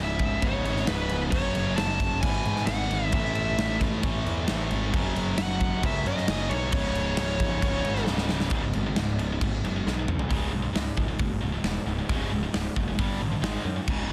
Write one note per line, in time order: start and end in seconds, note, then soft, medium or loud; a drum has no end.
0.00 0.19 C#1 loud
0.00 0.41 C#2 medium
0.00 0.42 G#2 loud
0.00 0.43 C#3 loud
0.00 0.47 E5 medium
0.19 0.41 C#1 medium
0.19 kick medium
0.19 crash medium
0.42 0.64 C#1 loud
0.42 1.31 C#2 medium
0.42 1.32 G#2 medium
0.42 1.32 C#3 medium
0.42 0.88 C#5 loud
0.42 kick loud
0.42 crash medium
0.65 0.86 G#1 medium
0.65 crash medium
0.76 snare soft
0.87 1.09 C#1 loud
0.87 1.20 B4 medium
0.87 snare loud
0.87 crash medium
1.09 1.32 C#1 medium
1.09 crash medium
1.31 1.54 F#1 medium
1.31 2.21 F#2 loud
1.31 2.22 C#3 loud
1.31 2.23 F#3 loud
1.31 1.79 C#5 loud
1.31 kick loud
1.31 crash medium
1.55 1.77 F#1 medium
1.55 crash medium
1.76 2.20 F#1 medium
1.76 2.21 A5 loud
1.76 snare loud
1.76 crash medium
2.00 kick medium
2.00 crash medium
2.21 2.44 G#1 loud
2.21 3.12 E2 loud
2.21 3.12 B2 medium
2.21 2.69 G#5 loud
2.21 kick loud
2.21 crash loud
2.25 3.13 E3 loud
2.45 2.66 G#2 medium
2.45 crash medium
2.56 snare soft
2.66 2.89 G#1 medium
2.66 3.14 F#5 loud
2.66 snare loud
2.66 crash medium
2.90 3.12 G#1 medium
2.90 crash medium
3.12 3.55 A1 loud
3.12 4.01 A2 loud
3.12 4.03 E3 loud
3.12 4.05 A3 loud
3.12 3.77 E5 medium
3.12 kick loud
3.12 crash medium
3.35 crash medium
3.58 3.79 A1 loud
3.58 snare loud
3.58 crash medium
3.81 4.02 A1 medium
3.81 kick medium
3.81 crash medium
4.03 4.25 A1 loud
4.03 4.91 A2 medium
4.03 4.92 E3 medium
4.03 4.93 A3 medium
4.03 kick loud
4.03 crash medium
4.26 4.47 E2 medium
4.26 crash medium
4.48 4.70 A1 loud
4.48 snare loud
4.48 crash medium
4.71 4.92 G#1 loud
4.71 crash medium
4.91 5.15 F#1 medium
4.91 5.81 F#2 loud
4.91 5.82 C#3 loud
4.91 kick loud
4.91 crash medium
4.96 5.83 F#3 loud
5.16 5.37 F#1 medium
5.16 crash medium
5.38 5.80 F#1 loud
5.38 5.85 F#5 loud
5.38 snare loud
5.38 crash medium
5.60 kick medium
5.60 crash medium
5.82 6.04 C#2 loud
5.82 6.71 F#2 medium
5.82 6.71 C#3 medium
5.82 6.72 F#3 medium
5.82 kick loud
5.82 crash loud
5.86 6.07 E5 loud
6.05 6.26 F#2 medium
6.05 6.53 D#5 medium
6.05 crash medium
6.17 snare soft
6.27 6.49 F#1 loud
6.27 snare loud
6.27 crash medium
6.49 6.71 B1 medium
6.49 6.72 C#5 medium
6.49 crash medium
6.72 7.15 C#1 loud
6.72 7.60 C#2 loud
6.72 7.61 G#2 loud
6.72 7.62 C#3 loud
6.72 8.03 C#5 medium
6.72 kick loud
6.72 crash loud
6.95 crash medium
7.17 7.38 C#1 loud
7.17 snare loud
7.17 crash medium
7.40 7.61 C#1 loud
7.40 kick medium
7.40 crash medium
7.61 7.83 C#1 loud
7.61 8.50 C#2 medium
7.61 8.50 G#2 medium
7.61 8.51 C#3 medium
7.61 kick loud
7.61 crash medium
7.85 8.06 G#1 medium
7.85 crash medium
7.96 snare soft
8.07 8.28 C#1 medium
8.07 snare medium
8.18 snare medium
8.29 8.51 C#1 medium
8.29 snare medium
8.40 snare medium
8.50 8.72 C#1 loud
8.50 8.62 C#2 medium
8.50 8.62 G#2 medium
8.50 8.62 C#3 loud
8.50 kick loud
8.50 crash medium
8.63 8.74 C#2 medium
8.63 8.74 G#2 medium
8.73 8.96 G#1 loud
8.73 8.85 C#2 medium
8.73 8.85 G#2 medium
8.73 crash medium
8.86 8.96 C#2 medium
8.86 8.96 G#2 medium
8.96 9.38 C#1 loud
8.96 9.17 C#2 medium
8.96 9.17 G#2 medium
8.96 snare loud
8.96 crash medium
9.19 9.30 C#2 medium
9.19 9.30 G#2 medium
9.19 crash medium
9.32 9.41 C#2 medium
9.32 9.42 G#2 medium
9.41 9.62 G#1 loud
9.41 9.62 C#2 medium
9.41 9.62 G#2 medium
9.41 kick loud
9.41 crash medium
9.64 9.84 F#1 medium
9.64 9.75 C#2 medium
9.64 9.75 G#2 medium
9.64 crash medium
9.76 9.86 C#2 medium
9.76 9.86 G#2 medium
9.86 10.28 B1 medium
9.86 9.98 C#2 medium
9.86 9.98 G#2 medium
9.86 snare medium
9.99 10.09 C#2 medium
9.99 10.09 G#2 medium
10.08 10.20 C#2 medium
10.08 10.19 G#2 medium
10.08 mid tom medium
10.19 10.29 C#2 medium
10.19 10.30 G#2 medium
10.19 floor tom medium
10.31 10.45 C#1 medium
10.31 10.52 C#2 medium
10.31 10.52 G#2 medium
10.31 10.52 C#3 loud
10.31 kick loud
10.31 open hi-hat medium
10.53 10.67 B1 medium
10.53 10.62 C#2 medium
10.53 10.62 G#2 medium
10.63 10.73 C#2 medium
10.63 10.72 G#2 medium
10.74 10.95 C#2 medium
10.74 10.89 C#2 medium
10.74 10.94 G#2 medium
10.74 snare loud
10.74 open hi-hat medium
10.97 11.12 C#1 medium
10.97 11.08 C#2 medium
10.97 11.07 G#2 medium
10.97 kick medium
11.09 11.19 C#2 medium
11.09 11.19 G#2 medium
11.18 11.34 F#1 loud
11.18 11.40 C#2 medium
11.18 11.40 G#2 medium
11.18 kick loud
11.18 open hi-hat medium
11.42 11.56 C#1 medium
11.42 11.53 C#2 medium
11.42 11.52 G#2 medium
11.54 11.64 C#2 medium
11.54 11.64 G#2 medium
11.63 11.78 E1 medium
11.63 11.85 C#2 medium
11.63 11.85 G#2 medium
11.63 snare loud
11.63 open hi-hat medium
11.86 12.01 C#1 medium
11.86 11.98 C#2 medium
11.86 11.98 G#2 medium
11.99 12.09 C#2 medium
11.99 12.10 G#2 medium
12.09 12.24 C#1 loud
12.09 12.31 C#2 medium
12.09 12.30 G#2 loud
12.09 12.31 C#3 loud
12.09 kick loud
12.09 open hi-hat medium
12.31 12.45 C#1 medium
12.31 12.42 C#2 medium
12.31 12.41 G#2 medium
12.43 12.53 C#2 medium
12.43 12.53 G#2 medium
12.54 12.68 C#1 medium
12.54 12.74 C#2 medium
12.54 12.74 G#2 medium
12.54 snare loud
12.54 open hi-hat medium
12.76 12.91 F#1 medium
12.76 12.87 C#2 medium
12.76 12.86 G#2 medium
12.76 kick medium
12.88 12.98 C#2 medium
12.88 12.99 G#2 medium
12.99 13.13 G1 loud
12.99 13.19 G2 medium
12.99 13.19 D3 medium
12.99 13.20 G3 loud
12.99 kick loud
12.99 open hi-hat medium
13.20 13.34 A1 medium
13.20 13.30 G2 medium
13.20 13.30 D3 medium
13.31 13.41 G2 medium
13.31 13.43 D3 medium
13.41 13.56 G#1 medium
13.41 13.63 G#2 loud
13.41 13.64 D#3 medium
13.41 13.64 G#3 loud
13.41 snare loud
13.41 open hi-hat medium
13.65 13.79 F#2 medium
13.65 13.75 G#2 medium
13.65 13.74 D#3 medium
13.76 13.88 G#2 medium
13.76 13.87 D#3 medium
13.87 14.01 C#1 medium
13.87 14.09 C#2 medium
13.87 14.09 G#2 loud
13.87 14.09 C#3 loud
13.87 kick loud
13.87 crash loud
14.09 14.13 B1 medium